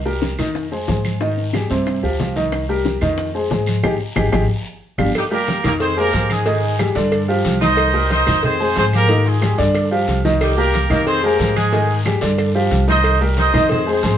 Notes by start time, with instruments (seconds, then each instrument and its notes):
Already playing: upright bass C2
0.06 upright piano G3 G4 A#4, high bongo, high conga, maracas
0.22 high bongo, high conga, short guiro, maracas
0.39 upright bass F2, upright piano D#3 D#4 D#5, high bongo, high conga, low conga, short guiro, claves, maracas
0.55 high bongo, high conga, long guiro, maracas
0.71 upright piano G#3 G#4 C5, high bongo, high conga, maracas
0.88 upright bass G#2, upright piano G#3 G#4 C5, high bongo, low bongo, high conga, short guiro, maracas
1.05 high conga, short guiro, claves, maracas
1.21 upright piano D#3 D#4 D#5, high bongo, high conga, long guiro, maracas
1.37 high bongo, high conga, maracas
1.53 upright piano G3 G4 G#4, high bongo, high conga, short guiro, claves, maracas
1.70 upright bass G2, upright piano C3 C4 C5, high bongo, high conga, short guiro, maracas
1.86 high bongo, high conga, long guiro, claves, maracas
2.03 upright bass D2, upright piano F3 F4 G4, high bongo, high conga, maracas
2.19 upright bass C2, upright piano F3 F4 G4, high bongo, low bongo, high conga, short guiro, maracas
2.36 upright piano D#3 D#4 D#5, high conga, short guiro, maracas
2.52 high bongo, high conga, long guiro, claves, maracas
2.69 upright piano G3 G4 A#4, high bongo, high conga, maracas
2.85 high bongo, high conga, short guiro, maracas
3.01 upright bass F2, upright piano D#3 D#4 D#5, high bongo, high conga, low conga, short guiro, claves, maracas
3.17 high bongo, high conga, long guiro, maracas
3.35 upright piano G#3 G#4 C5, high bongo, high conga, maracas
3.50 upright bass G#2, upright piano G#3 G#4 C5, high bongo, low bongo, high conga, short guiro, maracas
3.66 high conga, short guiro, claves, maracas
3.83 upright bass G#1, upright piano D#4 G4 G#4, low bongo, high conga, long guiro, claves, maracas
4.16 upright bass G#1, upright piano D#4 G4 G#4, low bongo, high conga, long guiro, claves, maracas
4.32 upright bass G#1, upright piano D#4 G4 G#4, low bongo, high conga, long guiro, claves, maracas
4.98 upright bass G1, upright piano D4 F4 G4, low bongo, high conga, long guiro, claves, maracas
5.15 horn section G3 D#4 G4, cowbell, high conga, long guiro, claves, maracas
5.31 upright piano G3 G4 A#4, horn section A#3 G4 A#4, high conga, maracas
5.48 cowbell, high conga, short guiro, maracas
5.64 upright bass F2, upright piano D#3 D#4 D#5, horn section A#3 G4 A#4, high conga, low conga, short guiro, claves, maracas
5.80 horn section C4 G#4 C5, cowbell, high conga, long guiro, maracas
5.97 upright piano G#3 G#4 C5, horn section A#3 G4 A#4, high conga, maracas
6.13 upright bass G#2, upright piano G#3 G#4 C5, cowbell, high conga, short guiro, maracas
6.30 horn section G#3 D#4 G#4, high conga, short guiro, claves, maracas
6.46 upright piano D#3 D#4 D#5, cowbell, high conga, long guiro, maracas
6.63 high conga, maracas
6.79 upright piano G3 G4 G#4, cowbell, high conga, short guiro, claves, maracas
6.95 upright bass G2, upright piano D3 D4 D5, cowbell, high conga, short guiro, maracas
7.12 cowbell, high conga, long guiro, claves, maracas
7.28 upright piano F3 F4 G4, high conga, maracas
7.45 upright bass C2, cowbell, high conga, short guiro, maracas
7.61 upright piano D#3 D#4 D#5, horn section D#4 C5 D#5, high conga, short guiro, maracas
7.77 cowbell, high conga, long guiro, claves, maracas
7.94 upright piano G3 G4 A#4, high conga, maracas
8.10 horn section D#4 C5 D#5, cowbell, high conga, short guiro, maracas
8.26 upright bass F2, upright piano D#3 D#4 D#5, high conga, low conga, short guiro, claves, maracas
8.43 horn section C4 G#4 C5, cowbell, high conga, low conga, long guiro, maracas
8.60 upright piano G#3 G#4 C5, high conga, maracas
8.76 upright bass G#2, upright piano G#3 G#4 C5, horn section C4 G#4 C5, cowbell, high conga, short guiro, maracas
8.93 horn section A#3 G4 A#4, high conga, short guiro, claves, maracas
9.09 upright piano D#3 D#4 D#5, cowbell, high conga, maracas
9.26 horn section G#3 F4 G#4, high conga, maracas
9.41 upright piano G3 G4 G#4, cowbell, high conga, short guiro, claves, maracas
9.58 upright bass G2, upright piano D3 D4 D5, cowbell, short guiro, maracas
9.75 cowbell, high conga, long guiro, claves, maracas
9.91 upright piano F3 F4 G4, high conga, maracas
10.08 upright bass C2, cowbell, high conga, short guiro, maracas
10.25 upright piano D#3 D#4 D#5, high conga, short guiro, maracas
10.41 horn section G3 D#4 G4, cowbell, high conga, long guiro, claves, maracas
10.57 upright piano G3 G4 A#4, horn section A#3 G4 A#4, high conga, maracas
10.74 cowbell, high conga, short guiro, maracas
10.90 upright bass F2, upright piano D#3 D#4 D#5, horn section A#3 G4 A#4, high conga, low conga, short guiro, claves, maracas
11.06 horn section C4 G#4 C5, cowbell, high conga, long guiro, maracas
11.22 upright piano G#3 G#4 C5, horn section A#3 G4 A#4, high conga, maracas
11.39 upright bass G#2, upright piano G#3 G#4 C5, cowbell, high conga, short guiro, maracas
11.56 horn section G#3 D#4 G#4, high conga, short guiro, claves, maracas
11.72 upright piano D#3 D#4 D#5, cowbell, high conga, long guiro, maracas
11.89 high conga, maracas
12.05 upright piano G3 G4 G#4, cowbell, high conga, short guiro, claves, maracas
12.21 upright bass G2, upright piano D3 D4 D5, cowbell, high conga, short guiro, maracas
12.38 cowbell, high conga, long guiro, claves, maracas
12.55 upright piano F3 F4 G4, high conga, maracas
12.71 upright bass C2, cowbell, high conga, short guiro, maracas
12.88 upright piano D#3 D#4 D#5, horn section D#4 C5 D#5, high conga, short guiro, maracas
13.04 cowbell, high conga, long guiro, claves, maracas
13.21 upright piano G3 G4 A#4, high conga, maracas
13.37 horn section D#4 C5 D#5, cowbell, high conga, short guiro, maracas
13.54 upright bass F2, upright piano D#3 D#4 D#5, high conga, low conga, short guiro, claves, maracas
13.69 horn section C4 G#4 C5, cowbell, high conga, low conga, long guiro, maracas
13.87 upright piano G#3 G#4 C5, high conga, maracas
13.92 horn section C4 G#4 C5
14.03 upright bass G#2, upright piano G#3 G#4 C5, cowbell, high conga, short guiro, maracas